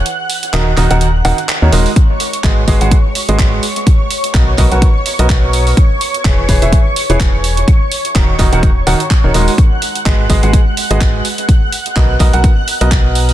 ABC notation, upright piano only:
X:1
M:4/4
L:1/16
Q:"Swing 16ths" 1/4=126
K:G#m
V:1 name="Upright piano"
z4 [D,DFAd] z [D,DFAd] [D,DFAf] z2 [D,DFAf] z2 [D,DFAc] [G,DFAd] z | z4 [G,FGBd] z [G,FGBd] [G,FGBf] z3 [G,FGBd]3 z2 | z4 [B,FABd] z [B,FABd] [B,FABf] z3 [B,FABd]4- [B,FABd] | z4 [E,EGBc] z [E,EGBc] [E,EGBe] z3 [E,EGBc]4- [E,EGBc] |
z4 [D,DFAd] z [D,DFAd] [D,DFAf] z2 [D,DFAf] z2 [D,DFAc] [G,DFAd] z | z4 [G,FGBd] z [G,FGBd] [G,FGBf] z3 [G,FGBd]3 z2 | z4 [B,FABd] z [B,FABd] [B,FABf] z3 [B,FABd]4- [B,FABd] |]